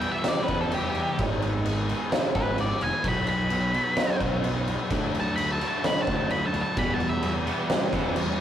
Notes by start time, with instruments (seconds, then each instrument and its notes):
Already playing: lead electric guitar G5
0.01 clean electric guitar E2 B2 E3 G3 B3 E4, crash
0.12 lead electric guitar E5
0.24 clean electric guitar E3 G3 B3 E4, snare, crash
0.28 lead electric guitar D5
0.43 clean electric guitar B3 E4, lead electric guitar B4
0.48 fingered electric bass E2, clean electric guitar E2 B2 E3 G3, kick, crash
0.61 lead electric guitar A4
0.69 clean electric guitar E3 G3 B3 E4, crash
0.75 lead electric guitar G4
0.90 clean electric guitar B3 E4, lead electric guitar G4
0.95 clean electric guitar E3 G3, crash
1.16 fingered electric bass G#1, clean electric guitar G#2 D#3 G#3 B3 D#4 G#4, kick, crash
1.40 distorted electric guitar G#2 D#3, clean electric guitar G#3 B3 D#4 G#4, crash
1.64 distorted electric guitar G#2 D#3, clean electric guitar G#3 B3 D#4 G#4, crash
1.88 clean electric guitar G#2 D#3 G#3 B3 D#4 G#4, crash
2.11 distorted electric guitar G#2 D#3, clean electric guitar G#3 B3 D#4 G#4, snare, crash
2.34 fingered electric bass G#1, clean electric guitar G#2 D#3 G#3 B3 D#4 G#4, lead electric guitar B4, kick, crash
2.57 distorted electric guitar G#2 D#3, clean electric guitar G#3 B3 D#4 G#4, lead electric guitar D5, crash
2.80 fingered electric bass F1, distorted electric guitar G#2 D#3, clean electric guitar G#3 B3 D#4 G#4, lead electric guitar G#5, crash
3.04 fingered electric bass B1, clean electric guitar B2 F#3 B3 D#4 F#4, kick, crash
3.08 lead electric guitar B5
3.26 distorted electric guitar B2 F#3, clean electric guitar B3 D#4 F#4, lead electric guitar B5, crash
3.50 distorted electric guitar B2, clean electric guitar F#3 B3 D#4 F#4, crash
3.74 clean electric guitar B2 F#3 B3 D#4 F#4, crash
3.96 distorted electric guitar B2, clean electric guitar F#3 B3 D#4 F#4, snare, crash
4.20 fingered electric bass B1, clean electric guitar B2 F#3 B3 D#4 F#4, kick, crash
4.44 distorted electric guitar B2, clean electric guitar F#3 B3 D#4 F#4, crash
4.66 distorted electric guitar B2 F#3, clean electric guitar B3 D#4 F#4, crash
4.90 fingered electric bass D2, clean electric guitar D3 A3 D4 F#4, distorted electric guitar F#3, kick, crash
5.14 distorted electric guitar D3 F#3, clean electric guitar A3 D4 F#4, crash
5.20 lead electric guitar A5
5.36 clean electric guitar D3 A3 D4 F#4, distorted electric guitar F#3, lead electric guitar B5, crash
5.52 lead electric guitar A5
5.61 clean electric guitar D3 A3 D4 F#4, distorted electric guitar F#3, crash
5.68 lead electric guitar A5
5.83 clean electric guitar D3 A3 D4 F#4, distorted electric guitar F#3, lead electric guitar B5, snare, crash
6.02 lead electric guitar A5
6.07 fingered electric bass D2, clean electric guitar D3 A3 D4 F#4, distorted electric guitar F#3, kick, crash
6.16 lead electric guitar A5
6.30 clean electric guitar D3 A3 D4 F#4, distorted electric guitar F#3, lead electric guitar B5, crash
6.47 lead electric guitar A5
6.54 fingered electric bass D2, distorted electric guitar D3 F#3, clean electric guitar A3 D4 F#4, crash
6.62 lead electric guitar A5
6.77 fingered electric bass E2, clean electric guitar E2 B2 E3 G3 B3 G4, lead electric guitar B5, kick, crash
6.94 lead electric guitar A5
7.00 clean electric guitar E3 G3 B3 G4, crash
7.09 lead electric guitar E5
7.23 clean electric guitar E3 G3 B3 G4, crash
7.47 clean electric guitar E2 B2 E3 G3 B3 G4, crash
7.69 clean electric guitar E3 G3 B3 G4, snare, crash
7.91 fingered electric bass E2, clean electric guitar E2 B2 E3 G3 B3 G4, kick, crash
8.15 clean electric guitar E3 G3 B3 G4, crash
8.37 clean electric guitar G4